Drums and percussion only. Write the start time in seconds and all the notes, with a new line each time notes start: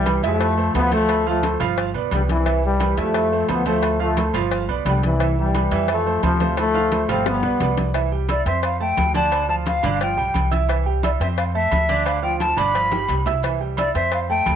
0.06 cowbell, high conga, low agogo, maracas
0.23 cowbell, high conga, maracas
0.40 cowbell, high conga, low agogo, maracas
0.57 high conga, maracas
0.74 cowbell, high conga, low timbale, low agogo, maracas
0.91 cowbell, high conga, maracas
1.08 cowbell, low agogo, maracas
1.26 high conga, maracas
1.43 cowbell, high conga, low agogo, maracas
1.60 cowbell, high conga, low conga, low agogo, maracas
1.77 cowbell, high conga, maracas
1.94 high conga, low agogo, maracas
2.11 cowbell, high conga, low timbale, low agogo, maracas
2.29 cowbell, high conga, maracas
2.46 cowbell, high conga, low agogo, maracas
2.63 high conga, maracas
2.80 cowbell, high conga, low agogo, maracas
2.97 cowbell, high conga, maracas
3.14 cowbell, high conga, low agogo, maracas
3.31 high conga, maracas
3.48 cowbell, high conga, low agogo, maracas
3.65 cowbell, high conga, maracas
3.82 cowbell, low agogo, maracas
4.00 high conga, maracas
4.17 cowbell, high conga, low agogo, maracas
4.34 cowbell, high conga, low conga, low agogo, maracas
4.51 cowbell, high conga, maracas
4.69 high conga, low agogo, maracas
4.86 cowbell, high conga, low timbale, low agogo, maracas
5.03 cowbell, high conga, maracas
5.20 cowbell, low agogo, maracas
5.37 high conga, maracas
5.55 cowbell, high conga, low agogo, maracas
5.71 cowbell, high conga, maracas
5.88 cowbell, high conga, low agogo, maracas
6.06 high conga, maracas
6.23 cowbell, high conga, low agogo, maracas
6.40 cowbell, high conga, maracas
6.57 cowbell, high timbale, low agogo, maracas
6.74 high conga, high timbale, maracas
6.92 cowbell, high conga, low agogo, maracas
7.09 cowbell, high conga, low conga, low timbale, low agogo, maracas
7.26 cowbell, high bongo, high conga, low timbale, maracas
7.43 low bongo, high conga, low agogo, maracas
7.60 cowbell, high conga, low timbale, low agogo, maracas
7.77 cowbell, low bongo, high conga, low timbale, maracas
7.94 cowbell, low agogo, maracas
8.12 high conga, maracas
8.29 cowbell, high conga, low agogo, maracas
8.46 cowbell, high conga, maracas
8.63 cowbell, high conga, low agogo, maracas
8.80 high conga, maracas
8.97 cowbell, high conga, low timbale, low agogo, maracas
9.14 cowbell, high conga, maracas
9.31 cowbell, low agogo, maracas
9.49 high conga, maracas
9.66 cowbell, high conga, low agogo, maracas
9.83 cowbell, high conga, low conga, low agogo, maracas
10.00 cowbell, high conga, maracas
10.18 high conga, low agogo, maracas
10.34 cowbell, high conga, low agogo, maracas
10.52 cowbell, high conga, maracas
10.69 cowbell, low agogo, maracas
10.86 high conga, maracas
11.03 cowbell, high conga, low agogo, maracas
11.21 cowbell, high conga, maracas
11.38 cowbell, high conga, low agogo, maracas
11.55 high conga, maracas
11.71 cowbell, high conga, low timbale, low agogo, maracas
11.89 cowbell, high conga, maracas
12.06 cowbell, high conga, low agogo, maracas
12.24 high conga, maracas
12.40 cowbell, high conga, low agogo, maracas
12.58 cowbell, high conga, low conga, low agogo, maracas
12.75 cowbell, high conga, maracas
12.92 high conga, high timbale, low agogo, maracas
13.08 cowbell, low timbale, low agogo, maracas
13.26 cowbell, low conga, low timbale, maracas
13.43 cowbell, high conga, low agogo, maracas
13.61 high conga, maracas
13.77 cowbell, high conga, low agogo, maracas
13.95 cowbell, high conga, maracas
14.12 cowbell, high conga, low agogo, maracas
14.29 high conga, maracas
14.46 cowbell, high conga, low timbale, low agogo, maracas